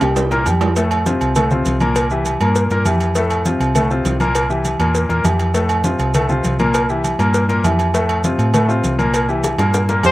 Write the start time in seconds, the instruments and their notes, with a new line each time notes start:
0.01 fingered electric bass C2, grand piano G3 G4 G5, cowbell, high timbale, low agogo, maracas
0.16 cowbell, high conga, low timbale, maracas
0.31 grand piano A#2 A#3 A#4, cowbell, high conga, low timbale, maracas
0.46 fingered electric bass F2, grand piano G3 G4 G5, cowbell, high conga, low agogo, maracas
0.61 cowbell, high conga, low timbale, low agogo, maracas
0.76 grand piano A2 A3 A4, cowbell, high conga, low agogo, maracas
0.91 cowbell, high conga, low agogo, maracas
1.06 grand piano C3 C4 F4, cowbell, high conga, maracas
1.21 fingered electric bass C2, cowbell, low agogo, maracas
1.35 grand piano A2 A3 A4, cowbell, high conga, low conga, low agogo, maracas
1.51 grand piano C3 C4 F4, high conga, low conga, maracas
1.65 fingered electric bass C2, cowbell, high conga, low agogo, maracas
1.80 grand piano A#2 A#3 A#4, high conga, low agogo, maracas
1.96 cowbell, high conga, low agogo, maracas
2.10 grand piano E3 E4 G4, high conga, maracas
2.25 cowbell, high conga, low agogo, maracas
2.40 fingered electric bass G2, grand piano A#2 A#3 A#4, cowbell, low agogo, maracas
2.55 cowbell, high conga, maracas
2.70 fingered electric bass G2, grand piano A#2 A#3 A#4, cowbell, high conga, maracas
2.85 fingered electric bass F2, grand piano E3 E4 G4, cowbell, high conga, low agogo, maracas
3.00 cowbell, high conga, low agogo, maracas
3.15 grand piano A2 A3 A4, cowbell, high conga, low agogo, maracas
3.30 cowbell, high conga, low agogo, maracas
3.45 grand piano C3 C4 F4, cowbell, high conga, maracas
3.60 fingered electric bass C2, cowbell, high conga, low agogo, maracas
3.75 grand piano A2 A3 A4, cowbell, high conga, low conga, low agogo, maracas
3.90 grand piano C3 C4 F4, high conga, maracas
4.05 fingered electric bass C2, cowbell, high conga, low timbale, low agogo, maracas
4.20 grand piano A#2 A#3 A#4, high conga, low agogo, maracas
4.35 cowbell, low agogo, maracas
4.50 grand piano E3 E4 G4, high conga, maracas
4.65 cowbell, high conga, low agogo, maracas
4.79 fingered electric bass E2, grand piano A#2 A#3 A#4, cowbell, low agogo, maracas
4.95 cowbell, high conga, maracas
5.09 fingered electric bass E2, grand piano A#2 A#3 A#4, cowbell, high conga, maracas
5.24 fingered electric bass F2, grand piano E3 E4 G4, cowbell, high conga, low timbale, low agogo, maracas
5.39 cowbell, low agogo, maracas
5.54 grand piano A2 A3 A4, cowbell, high conga, low agogo, maracas
5.69 cowbell, high conga, low agogo, maracas
5.84 grand piano C3 C4 F4, cowbell, high conga, maracas
5.99 fingered electric bass C2, cowbell, low agogo, maracas
6.14 grand piano A2 A3 A4, cowbell, high conga, low conga, low agogo, maracas
6.29 grand piano C3 C4 F4, high conga, low conga, maracas
6.44 fingered electric bass C2, cowbell, high conga, low agogo, maracas
6.59 grand piano A#2 A#3 A#4, high conga, low agogo, maracas
6.74 cowbell, high conga, low agogo, maracas
6.89 grand piano E3 E4 G4, high conga, maracas
7.04 cowbell, high conga, low agogo, maracas
7.19 fingered electric bass G2, grand piano A#2 A#3 A#4, cowbell, low agogo, maracas
7.34 cowbell, high conga, maracas
7.49 grand piano A#2 A#3 A#4, cowbell, high conga, maracas
7.64 fingered electric bass F2, grand piano E3 E4 G4, cowbell, high conga, low timbale, low agogo, maracas
7.79 cowbell, high conga, low agogo, maracas
7.94 grand piano A2 A3 A4, cowbell, high conga, low agogo, maracas
8.09 cowbell, high conga, low agogo, maracas
8.24 grand piano C3 C4 F4, cowbell, high conga, maracas
8.38 fingered electric bass A2, cowbell, low agogo, maracas
8.54 grand piano A2 A3 A4, cowbell, high conga, low conga, low agogo, maracas
8.68 grand piano C3 C4 F4, high conga, maracas
8.83 fingered electric bass C2, cowbell, high conga, low agogo, maracas
8.98 grand piano A#2 A#3 A#4, high conga, low agogo, maracas
9.14 cowbell, high conga, low agogo, maracas
9.28 grand piano E3 E4 G4, high conga, maracas
9.44 cowbell, high bongo, high conga, low agogo, maracas
9.58 fingered electric bass G2, grand piano A#2 A#3 A#4, cowbell, high bongo, low agogo, maracas
9.74 cowbell, high bongo, high conga, maracas
9.88 grand piano A#2 A#3 A#4, cowbell, low bongo, high conga, maracas
10.03 fingered electric bass F2, grand piano E3 E4 G4, horn section G4 C5, cowbell, low bongo, high conga, low agogo, maracas